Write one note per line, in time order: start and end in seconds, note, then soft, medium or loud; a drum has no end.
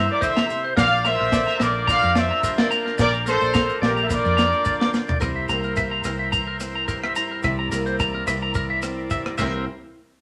0.00 0.21 E3 medium
0.00 1.05 A#3 medium
0.00 0.78 E4 medium
0.00 0.74 C5 medium
0.00 0.73 E5 medium
0.00 5.17 G5 medium
0.11 0.23 A#4 medium
0.11 0.23 D5 loud
0.21 0.49 D3 medium
0.21 0.31 C5 medium
0.21 0.65 C5 medium
0.21 0.65 E5 loud
0.21 kick medium
0.21 maracas loud
0.36 0.45 A#5 medium
0.36 snare medium
0.49 0.76 C3 medium
0.49 maracas medium
0.64 0.73 C5 medium
0.77 1.17 A#1 loud
0.77 1.32 A#2 medium
0.77 5.17 F4 medium
0.77 0.87 A#4 medium
0.77 1.03 D5 medium
0.77 5.17 D5 medium
0.77 1.03 F5 loud
0.77 kick loud
0.77 snare medium
0.77 maracas medium
0.91 1.00 D5 medium
1.05 1.60 A#3 medium
1.05 1.61 C5 loud
1.05 1.61 E5 loud
1.05 1.15 A#5 medium
1.05 snare soft
1.05 maracas medium
1.20 1.46 A#1 medium
1.20 1.29 A#4 medium
1.32 3.53 D3 medium
1.32 1.43 D5 medium
1.32 kick medium
1.32 snare medium
1.32 maracas loud
1.47 1.56 A#5 medium
1.47 maracas soft
1.60 2.00 A#1 loud
1.60 2.43 A#3 medium
1.60 1.70 A#4 medium
1.60 1.89 A#4 medium
1.60 1.89 D5 loud
1.60 snare medium
1.60 maracas medium
1.87 2.96 F4 medium
1.87 2.15 D5 medium
1.87 2.15 F5 loud
1.87 1.98 A#5 loud
1.87 kick loud
1.87 snare soft
1.87 maracas loud
2.02 2.29 F2 medium
2.02 2.11 A#4 medium
2.15 2.71 D4 medium
2.15 2.72 C5 medium
2.15 2.26 D5 medium
2.15 2.72 E5 loud
2.15 snare medium
2.15 maracas medium
2.31 2.39 A#5 medium
2.43 2.58 G3 medium
2.43 2.54 A#4 medium
2.43 kick medium
2.43 maracas loud
2.58 2.99 A#3 medium
2.58 2.67 D5 medium
2.58 snare medium
2.71 2.96 D4 medium
2.71 2.81 A#5 medium
2.71 maracas medium
2.85 2.94 A#4 medium
2.85 snare soft
2.98 3.39 A#1 loud
2.98 3.54 A#2 medium
2.98 3.13 A#4 medium
2.98 3.13 D5 loud
2.98 muted clean electric guitar stroke loud
2.98 kick medium
2.98 snare medium
2.98 maracas medium
3.13 3.22 A#5 medium
3.13 maracas soft
3.26 3.82 A#3 medium
3.26 3.79 A4 medium
3.26 3.36 A#4 medium
3.26 3.79 C5 loud
3.26 snare soft
3.26 maracas medium
3.41 3.67 A#1 medium
3.41 3.50 D5 medium
3.41 maracas soft
3.54 5.21 D3 medium
3.54 3.64 A#5 medium
3.54 kick loud
3.54 snare medium
3.54 maracas loud
3.69 3.78 A#4 medium
3.69 maracas soft
3.82 4.22 A#1 medium
3.82 4.64 A#3 medium
3.82 4.04 G4 medium
3.82 4.05 A#4 medium
3.82 3.92 D5 medium
3.82 snare medium
3.96 4.05 A#5 medium
3.96 maracas soft
4.03 4.10 E5 medium
4.09 5.19 F4 medium
4.09 4.94 A#4 medium
4.09 4.95 D5 loud
4.09 muted clean electric guitar stroke medium
4.09 kick loud
4.09 snare soft
4.09 maracas loud
4.25 4.51 F2 medium
4.25 4.34 D5 medium
4.25 maracas soft
4.37 4.92 D4 medium
4.37 4.47 A#5 medium
4.37 snare medium
4.37 maracas medium
4.52 maracas soft
4.65 5.18 A#3 medium
4.65 4.75 D5 medium
4.65 kick medium
4.65 maracas loud
4.80 4.89 D6 medium
4.80 snare medium
4.93 5.18 D4 medium
4.93 snare medium
4.93 maracas medium
5.08 5.17 D5 medium
5.08 floor tom medium
5.08 maracas soft
5.20 5.48 C2 medium
5.20 6.04 C3 medium
5.20 6.33 E4 medium
5.20 5.31 A#4 medium
5.20 9.35 A#4 medium
5.20 7.42 C5 medium
5.20 9.35 E5 medium
5.20 kick medium
5.20 cross-stick medium
5.20 maracas medium
5.36 5.44 E5 medium
5.49 6.01 C2 loud
5.49 7.46 A#3 medium
5.49 5.59 A#5 medium
5.49 closed hi-hat soft
5.49 maracas medium
5.63 5.73 A#4 medium
5.63 maracas soft
5.76 6.61 C4 medium
5.76 5.87 E5 medium
5.76 kick medium
5.76 cross-stick medium
5.76 maracas medium
5.91 6.00 A#5 medium
6.04 7.12 C2 loud
6.04 7.76 E3 medium
6.04 6.15 A#4 medium
6.04 cross-stick medium
6.04 closed hi-hat soft
6.04 maracas loud
6.19 6.28 E5 medium
6.32 6.42 A#5 loud
6.32 muted steel-string acoustic guitar stroke medium
6.32 kick medium
6.32 maracas medium
6.47 6.56 A#4 medium
6.60 7.76 C4 medium
6.60 cross-stick medium
6.60 closed hi-hat soft
6.60 maracas medium
6.75 6.84 A#5 medium
6.88 7.41 G2 medium
6.88 6.98 A#4 medium
6.88 kick medium
6.88 maracas medium
7.03 7.12 E5 medium
7.03 cross-stick medium
7.16 7.44 E4 medium
7.16 7.26 A#5 medium
7.16 closed hi-hat soft
7.16 maracas medium
7.31 7.40 A#4 medium
7.42 7.70 C2 loud
7.42 8.27 C3 medium
7.42 8.55 E4 medium
7.42 9.36 D5 soft
7.42 7.54 E5 medium
7.42 kick medium
7.42 cross-stick medium
7.42 maracas medium
7.59 7.68 A#5 medium
7.72 8.24 C2 loud
7.72 9.39 A#3 medium
7.72 7.82 A#4 medium
7.72 closed hi-hat medium
7.72 maracas loud
7.86 7.95 C5 medium
7.86 maracas soft
8.00 8.82 C4 medium
8.00 8.10 A#5 loud
8.00 kick medium
8.00 cross-stick medium
8.00 maracas medium
8.14 8.23 A#4 medium
8.27 9.35 C2 loud
8.27 9.38 E3 medium
8.27 8.37 E5 medium
8.27 cross-stick medium
8.27 closed hi-hat soft
8.27 maracas loud
8.42 8.51 A#5 medium
8.54 9.39 E4 medium
8.54 8.65 A#4 medium
8.54 kick loud
8.54 maracas medium
8.70 8.79 E5 medium
8.82 9.39 C4 medium
8.82 cross-stick medium
8.82 closed hi-hat medium
8.82 maracas medium
9.10 9.39 G2 medium
9.10 9.21 E5 medium
9.10 kick medium
9.10 maracas medium
9.26 cross-stick medium
9.38 9.65 C2 loud
9.38 9.64 C3 medium
9.38 9.64 E3 medium
9.38 9.65 A#3 medium
9.38 9.65 C4 medium
9.38 9.64 A#4 medium
9.38 9.66 A#4 medium
9.38 9.64 C5 medium
9.38 9.65 C5 medium
9.38 9.64 E5 loud
9.38 9.66 E5 medium
9.38 kick medium
9.38 crash medium
9.38 maracas medium
9.42 9.66 E4 medium